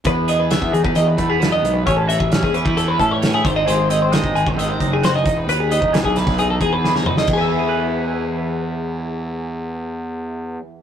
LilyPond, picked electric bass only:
\new Staff \with { instrumentName = "Picked electric bass" } { \clef bass \time 4/4 \key e \major \tempo 4 = 133 e,4~ e,16 e,16 e,16 e,16 e,8 e,4 b,,8 | a,,8. a,,8 e,8 e,8. a,4 gis,,8 | gis,,4~ gis,,16 gis,,16 gis,,16 gis,,16 gis,,8 fis,,4 e,,8 | dis,8. e,,8 b,,8 b,,8. e,4 e,,8 |
e,1~ | e,1 | }